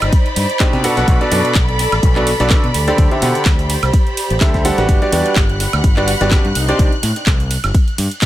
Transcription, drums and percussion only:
0.02 snare, closed hi-hat, high woodblock
0.13 kick, closed hi-hat, ride
0.26 closed hi-hat
0.36 closed hi-hat, open hi-hat, ride
0.50 closed hi-hat
0.60 kick, snare, clap, closed hi-hat, ride
0.73 snare, closed hi-hat
0.84 closed hi-hat, open hi-hat, ride
0.97 snare, closed hi-hat
1.08 kick, closed hi-hat, ride
1.21 closed hi-hat
1.32 closed hi-hat, open hi-hat, ride
1.45 closed hi-hat
1.55 kick, snare, clap, closed hi-hat, ride
1.69 closed hi-hat
1.79 snare, closed hi-hat, open hi-hat, ride
1.92 snare, closed hi-hat, high woodblock
2.03 kick, closed hi-hat, ride
2.16 clap, closed hi-hat
2.27 closed hi-hat, open hi-hat, ride
2.40 snare, closed hi-hat
2.50 kick, snare, clap, closed hi-hat, ride
2.64 closed hi-hat
2.74 closed hi-hat, open hi-hat, ride
2.88 closed hi-hat
2.98 kick, closed hi-hat, ride
3.11 closed hi-hat
3.22 snare, closed hi-hat, open hi-hat, ride
3.35 closed hi-hat
3.45 kick, snare, clap, closed hi-hat, ride
3.59 closed hi-hat
3.70 closed hi-hat, open hi-hat, ride
3.83 snare, closed hi-hat, high woodblock
3.93 kick, closed hi-hat, ride
4.07 closed hi-hat
4.17 closed hi-hat, open hi-hat, ride
4.30 closed hi-hat
4.41 kick, snare, clap, closed hi-hat, ride
4.54 kick, snare, closed hi-hat
4.65 closed hi-hat, open hi-hat, ride
4.78 snare, closed hi-hat
4.89 kick, closed hi-hat, ride
5.02 closed hi-hat
5.12 closed hi-hat, open hi-hat, ride
5.26 closed hi-hat
5.36 kick, snare, clap, closed hi-hat, ride
5.49 closed hi-hat
5.60 snare, closed hi-hat, open hi-hat, ride
5.73 snare, closed hi-hat, high woodblock
5.84 kick, closed hi-hat, ride
5.97 clap, closed hi-hat
6.08 closed hi-hat, open hi-hat, ride
6.21 snare, closed hi-hat
6.31 kick, snare, clap, closed hi-hat, ride
6.45 closed hi-hat
6.55 closed hi-hat, open hi-hat, ride
6.68 closed hi-hat
6.79 kick, closed hi-hat, ride
6.92 closed hi-hat
7.03 snare, closed hi-hat, open hi-hat, ride
7.16 closed hi-hat
7.26 kick, snare, clap, closed hi-hat, ride
7.40 closed hi-hat
7.51 closed hi-hat, open hi-hat, ride
7.64 snare, closed hi-hat, high woodblock
7.74 kick, closed hi-hat, ride
7.88 closed hi-hat
7.98 closed hi-hat, open hi-hat, ride
8.11 closed hi-hat
8.22 kick, snare, clap, closed hi-hat, ride

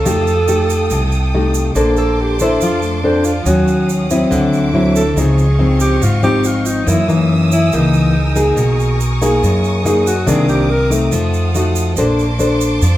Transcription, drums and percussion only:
0.06 shaker
0.27 shaker
0.48 shaker
0.70 shaker
0.90 shaker
1.12 shaker
1.54 shaker
1.76 shaker
1.97 shaker
2.39 shaker
2.61 shaker
2.82 shaker
3.24 shaker
3.46 shaker
3.68 shaker
3.89 shaker
4.10 shaker
4.32 shaker
4.53 shaker
4.96 shaker
5.17 shaker
5.38 shaker
5.80 shaker
6.02 shaker
6.23 shaker
6.44 shaker
6.65 shaker
6.88 shaker
7.09 shaker
7.52 shaker
7.72 shaker
7.93 shaker
8.36 shaker
8.57 shaker
8.80 shaker
9.00 shaker
9.22 shaker
9.44 shaker
9.64 shaker
9.86 shaker
10.07 shaker
10.27 shaker
10.49 shaker
10.91 shaker
11.12 shaker
11.34 shaker
11.55 shaker
11.76 shaker
11.97 shaker
12.19 shaker
12.39 shaker
12.61 shaker
12.82 shaker

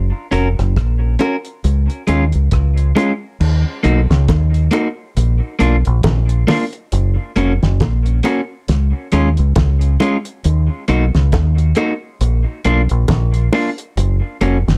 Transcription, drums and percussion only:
0.32 closed hi-hat
0.59 cross-stick, closed hi-hat
0.76 kick, cross-stick, closed hi-hat
1.19 closed hi-hat, high bongo, low bongo
1.45 closed hi-hat
1.64 closed hi-hat
1.90 closed hi-hat
2.08 closed hi-hat, high bongo
2.32 closed hi-hat
2.51 kick, cross-stick, closed hi-hat
2.77 closed hi-hat
2.96 closed hi-hat, high bongo, low bongo
3.40 crash
3.84 closed hi-hat
4.11 snare, closed hi-hat
4.28 kick, snare, closed hi-hat, high bongo
4.54 closed hi-hat
4.71 closed hi-hat, high bongo
5.17 closed hi-hat
5.60 closed hi-hat, high bongo
5.85 closed hi-hat
6.03 kick, snare, closed hi-hat, high bongo
6.29 closed hi-hat
6.48 snare, open hi-hat, high bongo, low bongo
6.73 closed hi-hat
6.92 closed hi-hat
7.36 closed hi-hat
7.63 snare, closed hi-hat
7.80 kick, snare, closed hi-hat, high bongo
8.06 closed hi-hat
8.23 closed hi-hat, high bongo
8.68 snare, closed hi-hat
9.12 closed hi-hat, high bongo
9.37 closed hi-hat
9.56 kick, snare, closed hi-hat, high bongo
9.81 closed hi-hat
10.00 closed hi-hat, high bongo, low bongo
10.25 closed hi-hat
10.44 closed hi-hat
10.88 closed hi-hat
11.15 snare, closed hi-hat
11.32 kick, snare, closed hi-hat, high bongo
11.58 closed hi-hat
11.75 closed hi-hat, high bongo
12.21 closed hi-hat
12.65 closed hi-hat, high bongo
12.89 closed hi-hat
13.08 kick, snare, closed hi-hat, high bongo
13.34 closed hi-hat
13.53 open hi-hat, high bongo, low bongo
13.78 closed hi-hat
13.97 closed hi-hat
14.41 closed hi-hat, high bongo
14.68 snare, closed hi-hat

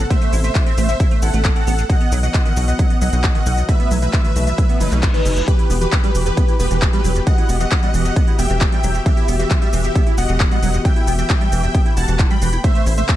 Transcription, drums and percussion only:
0.10 kick, closed hi-hat, shaker
0.22 closed hi-hat
0.33 open hi-hat, shaker
0.44 closed hi-hat, shaker
0.55 kick, clap, closed hi-hat, shaker
0.66 closed hi-hat
0.78 open hi-hat, shaker
0.89 closed hi-hat, shaker
1.00 kick, closed hi-hat, shaker
1.11 closed hi-hat
1.22 open hi-hat, shaker
1.34 closed hi-hat, shaker
1.45 kick, clap, closed hi-hat, shaker
1.56 closed hi-hat
1.67 open hi-hat, shaker
1.78 closed hi-hat, shaker
1.90 kick, closed hi-hat, shaker
2.01 closed hi-hat
2.12 open hi-hat, shaker
2.23 closed hi-hat, shaker
2.34 kick, clap, closed hi-hat, shaker
2.46 closed hi-hat
2.57 open hi-hat, shaker
2.68 closed hi-hat, shaker
2.79 kick, closed hi-hat, shaker
2.90 closed hi-hat
3.01 open hi-hat, shaker
3.13 closed hi-hat, shaker
3.24 kick, clap, closed hi-hat, shaker
3.35 closed hi-hat
3.46 open hi-hat, shaker
3.57 closed hi-hat, shaker
3.69 kick, closed hi-hat, shaker
3.80 closed hi-hat
3.91 open hi-hat, shaker
4.02 closed hi-hat, shaker
4.13 kick, clap, closed hi-hat, shaker
4.25 closed hi-hat
4.36 open hi-hat, shaker
4.47 closed hi-hat, shaker
4.58 kick, closed hi-hat, shaker
4.69 closed hi-hat
4.81 open hi-hat, shaker
4.92 clap, closed hi-hat, shaker
5.03 kick, clap, closed hi-hat, shaker
5.14 closed hi-hat
5.25 open hi-hat, shaker
5.37 closed hi-hat, shaker
5.48 kick, closed hi-hat, shaker
5.59 closed hi-hat
5.70 open hi-hat, shaker
5.81 closed hi-hat, shaker
5.93 kick, clap, closed hi-hat, shaker
6.04 closed hi-hat
6.15 open hi-hat, shaker
6.26 closed hi-hat, shaker
6.37 kick, closed hi-hat, shaker
6.48 closed hi-hat
6.60 open hi-hat, shaker
6.71 closed hi-hat, shaker
6.82 kick, clap, closed hi-hat, shaker
6.93 closed hi-hat
7.04 open hi-hat, shaker
7.16 closed hi-hat, shaker
7.27 kick, closed hi-hat, shaker
7.38 closed hi-hat
7.49 open hi-hat, shaker
7.60 closed hi-hat, shaker
7.72 kick, clap, closed hi-hat, shaker
7.83 closed hi-hat
7.94 open hi-hat, shaker
8.05 closed hi-hat, shaker
8.16 kick, closed hi-hat, shaker
8.28 closed hi-hat
8.39 open hi-hat, shaker
8.50 closed hi-hat, shaker
8.61 kick, clap, closed hi-hat, shaker
8.72 closed hi-hat
8.84 open hi-hat, shaker
8.95 closed hi-hat, shaker
9.06 kick, closed hi-hat, shaker
9.17 closed hi-hat
9.28 open hi-hat, shaker
9.39 closed hi-hat, shaker
9.51 kick, clap, closed hi-hat, shaker
9.62 closed hi-hat
9.73 open hi-hat, shaker
9.84 closed hi-hat, shaker
9.95 kick, closed hi-hat, shaker
10.07 closed hi-hat
10.18 open hi-hat, shaker
10.29 closed hi-hat, shaker
10.40 kick, clap, closed hi-hat, shaker
10.51 closed hi-hat
10.63 open hi-hat, shaker
10.74 closed hi-hat, shaker
10.85 kick, closed hi-hat, shaker
10.96 closed hi-hat
11.07 open hi-hat, shaker
11.19 closed hi-hat, shaker
11.30 kick, clap, closed hi-hat, shaker
11.41 closed hi-hat
11.52 open hi-hat, shaker
11.63 closed hi-hat, shaker
11.75 kick, closed hi-hat, shaker
11.86 closed hi-hat
11.97 open hi-hat, shaker
12.08 closed hi-hat, shaker
12.19 kick, clap, closed hi-hat, shaker
12.31 closed hi-hat
12.42 open hi-hat, shaker
12.53 closed hi-hat, shaker
12.64 kick, closed hi-hat, shaker
12.75 closed hi-hat
12.86 open hi-hat, shaker
12.98 closed hi-hat, shaker
13.09 kick, clap, closed hi-hat, shaker

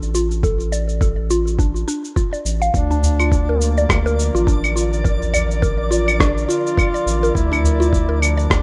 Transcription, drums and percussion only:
0.02 shaker
0.15 shaker
0.31 shaker
0.43 kick, shaker
0.60 shaker
0.73 shaker
0.89 shaker
1.01 kick, shaker
1.30 shaker
1.47 shaker
1.59 kick, shaker
1.76 shaker
1.88 shaker
2.04 shaker
2.16 kick, shaker
2.34 shaker
2.46 shaker
2.62 shaker
2.74 kick, shaker
2.91 udu, shaker
3.03 udu, shaker
3.20 claves, shaker
3.32 kick, shaker
3.61 shaker
3.77 shaker
3.89 kick, cross-stick, claves, shaker
4.07 shaker
4.19 shaker
4.36 shaker
4.47 kick, shaker
4.64 claves, shaker
4.77 shaker
4.93 shaker
5.05 kick, shaker
5.21 udu, shaker
5.34 udu, claves, shaker
5.51 shaker
5.62 kick, shaker
5.92 shaker
6.08 claves, shaker
6.20 kick, cross-stick, shaker
6.38 shaker
6.50 shaker
6.67 shaker
6.78 kick, claves, shaker
6.95 shaker
7.07 shaker
7.24 shaker
7.35 kick, shaker
7.51 udu, claves, shaker
7.64 udu, shaker
7.82 shaker
7.93 kick, shaker
8.22 claves, shaker
8.39 shaker
8.50 kick, cross-stick, shaker

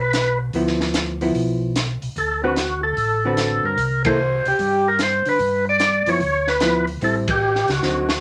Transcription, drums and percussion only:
0.13 snare, closed hi-hat
0.53 kick, open hi-hat
0.67 snare
0.80 snare
0.94 snare, closed hi-hat
1.21 open hi-hat
1.35 kick, open hi-hat
1.76 snare, closed hi-hat
2.02 open hi-hat
2.16 kick, open hi-hat
2.56 snare, closed hi-hat
2.97 kick, open hi-hat
3.37 snare, closed hi-hat
3.78 kick, open hi-hat
4.05 kick, ride
4.45 open hi-hat
4.59 kick, open hi-hat
4.99 snare, closed hi-hat
5.25 open hi-hat
5.39 kick, open hi-hat
5.80 snare, closed hi-hat
6.06 open hi-hat
6.20 kick, open hi-hat
6.47 snare
6.60 snare, closed hi-hat
6.87 open hi-hat
7.01 kick, open hi-hat
7.28 kick, ride
7.55 snare
7.68 snare, open hi-hat
7.83 snare
8.09 snare

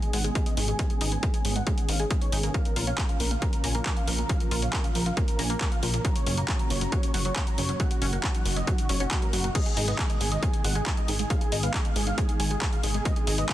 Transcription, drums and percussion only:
0.02 closed hi-hat
0.13 open hi-hat
0.24 closed hi-hat
0.35 kick, closed hi-hat
0.46 closed hi-hat
0.57 open hi-hat
0.68 closed hi-hat
0.79 kick, closed hi-hat
0.90 closed hi-hat
1.01 open hi-hat
1.12 closed hi-hat
1.23 kick, closed hi-hat
1.34 closed hi-hat
1.45 open hi-hat
1.56 closed hi-hat
1.67 kick, closed hi-hat
1.78 closed hi-hat
1.89 open hi-hat
2.00 closed hi-hat
2.11 kick, closed hi-hat
2.21 closed hi-hat
2.32 open hi-hat
2.43 closed hi-hat
2.54 kick, closed hi-hat
2.65 closed hi-hat
2.76 open hi-hat
2.87 closed hi-hat
2.98 kick, clap, closed hi-hat
3.09 closed hi-hat
3.20 open hi-hat
3.31 closed hi-hat
3.42 kick, closed hi-hat
3.53 closed hi-hat
3.64 open hi-hat
3.75 closed hi-hat
3.86 kick, clap, closed hi-hat
3.97 closed hi-hat
4.08 open hi-hat
4.18 closed hi-hat
4.29 kick, closed hi-hat
4.40 closed hi-hat
4.51 open hi-hat
4.62 closed hi-hat
4.73 kick, clap, closed hi-hat
4.84 closed hi-hat
4.95 open hi-hat
5.06 closed hi-hat
5.17 kick, closed hi-hat
5.28 closed hi-hat
5.39 open hi-hat
5.50 closed hi-hat
5.61 kick, clap, closed hi-hat
5.72 closed hi-hat
5.83 open hi-hat
5.94 closed hi-hat
6.05 kick, closed hi-hat
6.16 closed hi-hat
6.27 open hi-hat
6.37 closed hi-hat
6.48 kick, clap, closed hi-hat
6.59 closed hi-hat
6.70 open hi-hat
6.81 closed hi-hat
6.92 kick, closed hi-hat
7.03 closed hi-hat
7.14 open hi-hat
7.25 closed hi-hat
7.36 kick, clap, closed hi-hat
7.47 closed hi-hat
7.58 open hi-hat
7.69 closed hi-hat
7.80 kick, closed hi-hat
7.91 closed hi-hat
8.02 open hi-hat
8.13 closed hi-hat
8.24 kick, clap, closed hi-hat
8.35 closed hi-hat
8.46 open hi-hat
8.56 closed hi-hat
8.67 kick, closed hi-hat
8.78 closed hi-hat
8.89 open hi-hat
9.00 closed hi-hat
9.11 kick, clap, closed hi-hat
9.22 closed hi-hat
9.33 open hi-hat
9.44 closed hi-hat
9.55 kick, closed hi-hat, crash
9.66 closed hi-hat
9.77 open hi-hat
9.88 closed hi-hat
9.99 kick, clap, closed hi-hat
10.10 closed hi-hat
10.21 open hi-hat
10.32 closed hi-hat
10.43 kick, closed hi-hat
10.53 closed hi-hat
10.64 open hi-hat
10.75 closed hi-hat
10.86 kick, clap, closed hi-hat
10.97 closed hi-hat
11.08 open hi-hat
11.19 closed hi-hat
11.30 kick, closed hi-hat
11.41 closed hi-hat
11.52 open hi-hat
11.63 closed hi-hat
11.74 kick, clap, closed hi-hat
11.85 closed hi-hat
11.96 open hi-hat
12.07 closed hi-hat
12.18 kick, closed hi-hat
12.29 closed hi-hat
12.40 open hi-hat
12.51 closed hi-hat
12.62 kick, clap, closed hi-hat
12.73 closed hi-hat
12.83 open hi-hat
12.94 closed hi-hat
13.05 kick, closed hi-hat
13.16 closed hi-hat
13.27 open hi-hat
13.38 closed hi-hat
13.49 kick, clap, closed hi-hat

